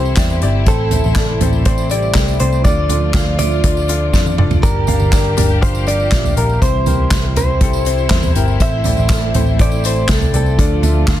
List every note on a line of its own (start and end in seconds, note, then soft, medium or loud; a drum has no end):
0.00 0.14 C2 medium
0.00 0.65 C3 medium
0.00 0.69 C3 medium
0.00 0.38 E3 medium
0.00 2.61 E3 medium
0.00 0.65 G3 medium
0.00 0.17 C4 loud
0.00 0.18 E4 medium
0.00 0.38 E4 medium
0.00 2.61 E4 loud
0.00 0.18 G4 medium
0.00 0.68 A4 loud
0.00 0.69 A#4 medium
0.00 0.39 C5 medium
0.00 0.68 C5 loud
0.05 tambourine soft
0.16 0.40 E2 loud
0.16 0.39 C4 medium
0.16 0.39 E4 medium
0.16 0.40 G4 medium
0.16 0.40 D5 medium
0.16 kick loud
0.16 snare loud
0.16 clap medium
0.16 closed hi-hat medium
0.16 tambourine medium
0.30 tambourine medium
0.42 0.65 G1 medium
0.42 0.64 C4 medium
0.42 0.64 E4 medium
0.42 0.64 G4 medium
0.42 0.64 D5 loud
0.42 closed hi-hat medium
0.66 1.01 A1 medium
0.66 1.37 A2 medium
0.66 2.63 C3 medium
0.66 4.59 A3 medium
0.66 1.64 A3 medium
0.66 0.89 C4 medium
0.66 0.89 E4 medium
0.66 1.64 A4 medium
0.66 0.89 A4 medium
0.66 1.66 A4 medium
0.66 0.89 C5 loud
0.66 kick loud
0.66 closed hi-hat medium
0.66 tambourine medium
0.91 1.14 C4 medium
0.91 1.14 E4 medium
0.91 1.14 A4 medium
0.91 1.14 C5 medium
0.91 closed hi-hat medium
0.91 floor tom medium
0.91 tambourine medium
1.04 1.39 A1 medium
1.04 tambourine soft
1.15 1.39 C4 medium
1.15 1.39 E4 medium
1.15 1.39 A4 medium
1.15 1.39 D5 medium
1.15 kick loud
1.15 snare loud
1.15 clap medium
1.15 closed hi-hat medium
1.15 tambourine medium
1.41 1.64 A1 loud
1.41 1.63 C4 medium
1.41 1.64 E4 medium
1.41 1.64 A4 medium
1.41 1.64 C5 medium
1.41 closed hi-hat medium
1.41 floor tom medium
1.41 tambourine soft
1.53 tambourine soft
1.65 1.88 C4 medium
1.65 1.88 E4 medium
1.65 1.88 A4 medium
1.65 1.89 C5 loud
1.65 1.88 D5 loud
1.65 kick loud
1.65 closed hi-hat medium
1.78 tambourine medium
1.90 2.39 G3 medium
1.90 2.13 C4 medium
1.90 2.13 E4 medium
1.90 2.39 G4 medium
1.90 2.13 A4 medium
1.90 2.13 D5 medium
1.90 2.40 D5 loud
1.90 closed hi-hat medium
1.90 tambourine soft
2.02 tambourine soft
2.14 2.38 C2 medium
2.14 2.38 C4 medium
2.14 2.38 E4 medium
2.14 2.38 A4 medium
2.14 2.38 D5 medium
2.14 kick medium
2.14 snare loud
2.14 clap medium
2.14 closed hi-hat medium
2.14 tambourine medium
2.28 tambourine medium
2.40 2.63 C2 loud
2.40 2.62 C4 medium
2.40 2.62 E4 medium
2.40 2.62 A4 medium
2.40 2.64 C5 medium
2.40 2.63 D5 medium
2.40 closed hi-hat medium
2.52 tambourine soft
2.64 3.11 D2 medium
2.64 6.58 D3 medium
2.64 3.36 D3 medium
2.64 4.35 F3 medium
2.64 4.61 F3 medium
2.64 2.87 D4 loud
2.64 4.35 F4 medium
2.64 4.62 F4 loud
2.64 2.87 F4 medium
2.64 2.87 A4 medium
2.64 3.38 D5 loud
2.64 2.87 D5 loud
2.64 kick loud
2.64 closed hi-hat medium
2.64 tambourine soft
2.89 3.12 D4 medium
2.89 3.12 F4 medium
2.89 3.12 A4 medium
2.89 3.12 D5 medium
2.89 closed hi-hat medium
2.89 floor tom medium
2.89 tambourine soft
3.14 3.60 D2 loud
3.14 3.36 D4 medium
3.14 3.37 F4 medium
3.14 3.37 A4 medium
3.14 3.37 F5 medium
3.14 kick loud
3.14 snare loud
3.14 clap loud
3.14 closed hi-hat medium
3.14 tambourine medium
3.39 3.61 D4 medium
3.39 3.61 F4 medium
3.39 3.61 A4 medium
3.39 4.34 D5 medium
3.39 3.62 E5 medium
3.39 closed hi-hat medium
3.39 floor tom medium
3.39 tambourine soft
3.51 tambourine soft
3.64 4.10 D2 loud
3.64 3.86 D4 medium
3.64 3.86 F4 medium
3.64 3.86 A4 medium
3.64 3.86 D5 loud
3.64 kick loud
3.64 closed hi-hat loud
3.77 tambourine medium
3.88 4.11 D4 medium
3.88 4.11 F4 medium
3.88 4.11 A4 medium
3.88 4.11 D5 medium
3.88 closed hi-hat medium
3.88 tambourine medium
4.13 4.37 F2 medium
4.13 4.36 D4 medium
4.13 4.36 F4 medium
4.13 4.36 A4 medium
4.13 4.36 D5 medium
4.13 kick medium
4.13 snare medium
4.13 tambourine medium
4.26 high tom medium
4.26 tambourine medium
4.38 4.61 F1 medium
4.38 4.60 D4 medium
4.38 4.61 F4 medium
4.38 4.61 A4 medium
4.38 4.61 D5 loud
4.38 mid tom loud
4.51 floor tom loud
4.51 tambourine soft
4.63 4.98 G1 medium
4.63 5.34 G2 medium
4.63 5.36 G3 medium
4.63 8.56 G3 medium
4.63 6.60 A#3 medium
4.63 4.85 D4 medium
4.63 5.36 G4 medium
4.63 6.60 G4 loud
4.63 4.85 G4 medium
4.63 5.58 A#4 loud
4.63 4.85 A#4 medium
4.63 4.86 D5 medium
4.63 kick loud
4.63 closed hi-hat medium
4.63 tambourine medium
4.87 5.10 D4 medium
4.87 5.10 G4 medium
4.87 5.10 A#4 medium
4.87 5.10 F5 medium
4.87 closed hi-hat medium
4.87 floor tom medium
4.87 tambourine medium
5.00 5.35 G1 medium
5.00 tambourine soft
5.12 5.35 D4 medium
5.12 5.35 G4 medium
5.12 5.35 A#4 medium
5.12 5.35 D5 medium
5.12 kick loud
5.12 snare loud
5.12 clap medium
5.12 closed hi-hat medium
5.12 tambourine medium
5.37 5.61 G1 medium
5.37 5.59 D4 medium
5.37 5.60 G4 medium
5.37 5.60 A#4 medium
5.37 5.60 D5 medium
5.37 closed hi-hat medium
5.37 floor tom medium
5.37 tambourine soft
5.50 tambourine soft
5.61 6.09 G1 loud
5.61 6.35 F3 medium
5.61 5.84 D4 medium
5.61 6.35 F4 medium
5.61 5.84 G4 medium
5.61 5.84 A#4 medium
5.61 5.87 C5 loud
5.61 5.84 F5 medium
5.61 kick loud
5.61 closed hi-hat medium
5.75 tambourine medium
5.87 6.09 D4 medium
5.87 6.09 G4 medium
5.87 6.09 A#4 medium
5.87 6.09 D5 medium
5.87 6.34 D5 loud
5.87 closed hi-hat medium
5.87 tambourine medium
5.99 tambourine soft
6.11 6.35 A#1 medium
6.11 6.34 D4 medium
6.11 6.34 G4 medium
6.11 6.34 A#4 medium
6.11 6.34 E5 medium
6.11 kick loud
6.11 snare loud
6.11 clap medium
6.11 closed hi-hat medium
6.11 tambourine medium
6.24 floor tom medium
6.24 tambourine soft
6.36 6.60 A#1 loud
6.36 6.59 D4 medium
6.36 6.59 G4 medium
6.36 6.59 A#4 medium
6.36 6.60 A#4 medium
6.36 6.59 D5 medium
6.36 closed hi-hat medium
6.49 tambourine soft
6.61 7.08 C2 loud
6.61 10.54 C3 medium
6.61 7.32 C3 medium
6.61 7.34 E3 medium
6.61 10.55 E3 medium
6.61 6.84 C4 medium
6.61 7.34 E4 medium
6.61 6.84 E4 medium
6.61 10.55 E4 loud
6.61 6.84 G4 medium
6.61 6.84 C5 medium
6.61 7.32 C5 medium
6.61 kick loud
6.61 closed hi-hat medium
6.61 tambourine soft
6.86 7.09 C4 medium
6.86 7.09 E4 medium
6.86 7.09 G4 medium
6.86 7.09 A#4 medium
6.86 closed hi-hat medium
6.86 floor tom medium
6.86 tambourine medium
7.11 7.57 C2 loud
7.11 7.34 E4 medium
7.11 kick loud
7.11 snare loud
7.11 clap medium
7.11 closed hi-hat medium
7.11 tambourine loud
7.36 7.59 C4 medium
7.36 7.59 E4 medium
7.36 7.59 G4 medium
7.36 8.32 C5 medium
7.36 7.59 C5 medium
7.36 closed hi-hat medium
7.36 floor tom medium
7.36 tambourine soft
7.60 8.07 C2 loud
7.60 8.33 G3 medium
7.60 7.83 C4 medium
7.60 7.83 E4 medium
7.60 8.33 G4 medium
7.60 7.83 G4 medium
7.60 7.83 A4 loud
7.60 kick loud
7.60 closed hi-hat loud
7.73 tambourine medium
7.85 8.08 C4 medium
7.85 8.08 E4 medium
7.85 8.08 G4 medium
7.85 8.08 C5 medium
7.85 closed hi-hat medium
7.85 tambourine soft
7.98 tambourine soft
8.10 8.34 E2 loud
8.10 8.33 C4 medium
8.10 8.33 E4 medium
8.10 8.33 G4 medium
8.10 8.33 C5 loud
8.10 kick medium
8.10 snare loud
8.10 clap medium
8.10 closed hi-hat medium
8.10 tambourine medium
8.23 floor tom medium
8.23 tambourine medium
8.35 8.58 G1 medium
8.35 8.58 C4 medium
8.35 8.58 E4 medium
8.35 8.58 G4 medium
8.35 8.58 A#4 loud
8.35 closed hi-hat medium
8.48 tambourine soft
8.60 8.95 A1 medium
8.60 9.31 A2 medium
8.60 10.30 A3 medium
8.60 11.20 A3 medium
8.60 8.83 C4 medium
8.60 8.83 E4 medium
8.60 10.30 A4 medium
8.60 8.83 A4 medium
8.60 8.83 C5 loud
8.60 9.61 E5 loud
8.60 kick loud
8.60 closed hi-hat medium
8.60 tambourine medium
8.84 9.07 C4 medium
8.84 9.07 E4 medium
8.84 9.07 A4 medium
8.84 9.07 D5 medium
8.84 closed hi-hat medium
8.84 floor tom medium
8.84 tambourine medium
8.97 9.32 A1 medium
8.97 tambourine soft
9.09 9.32 C4 medium
9.09 9.32 E4 medium
9.09 9.32 A4 medium
9.09 9.32 C5 medium
9.09 kick loud
9.09 snare loud
9.09 clap medium
9.09 closed hi-hat medium
9.09 tambourine medium
9.34 9.58 A1 medium
9.34 9.57 C4 medium
9.34 9.57 E4 medium
9.34 9.57 A4 medium
9.34 9.57 C5 loud
9.34 closed hi-hat medium
9.34 floor tom medium
9.34 tambourine soft
9.46 tambourine soft
9.59 10.06 A1 loud
9.59 9.81 C4 medium
9.59 9.82 E4 medium
9.59 9.82 A4 medium
9.59 9.82 C5 loud
9.59 9.83 D5 loud
9.59 kick loud
9.59 closed hi-hat loud
9.72 tambourine soft
9.84 10.06 C4 medium
9.84 10.07 E4 medium
9.84 10.07 A4 medium
9.84 10.08 C5 medium
9.84 10.07 D5 loud
9.84 closed hi-hat medium
9.84 tambourine medium
9.96 tambourine soft
10.08 10.32 C2 medium
10.08 10.31 C4 medium
10.08 10.31 E4 medium
10.08 10.31 A4 medium
10.08 10.35 A4 medium
10.08 10.31 C5 medium
10.08 kick loud
10.08 snare loud
10.08 clap medium
10.08 closed hi-hat medium
10.08 tambourine medium
10.21 floor tom medium
10.21 tambourine medium
10.34 10.57 C2 loud
10.34 10.56 C4 medium
10.34 10.56 E4 medium
10.34 10.56 A4 medium
10.34 11.20 A4 medium
10.34 10.56 D5 medium
10.34 closed hi-hat medium
10.46 tambourine soft
10.58 11.05 D2 medium
10.58 11.20 D3 loud
10.58 11.20 D3 medium
10.58 11.20 F3 medium
10.58 10.81 D4 medium
10.58 11.20 F4 medium
10.58 10.81 F4 medium
10.58 10.81 A4 medium
10.58 10.81 D5 loud
10.58 kick loud
10.58 closed hi-hat medium
10.58 tambourine soft
10.83 11.05 D4 medium
10.83 11.05 F4 medium
10.83 11.05 A4 medium
10.83 11.06 E5 medium
10.83 closed hi-hat medium
10.83 floor tom medium
10.83 tambourine soft
11.07 11.20 D2 loud
11.07 11.20 D4 medium
11.07 11.20 F4 medium
11.07 11.20 A4 medium
11.07 11.20 F5 medium
11.07 kick loud
11.07 snare loud
11.07 clap loud
11.07 closed hi-hat medium
11.07 tambourine medium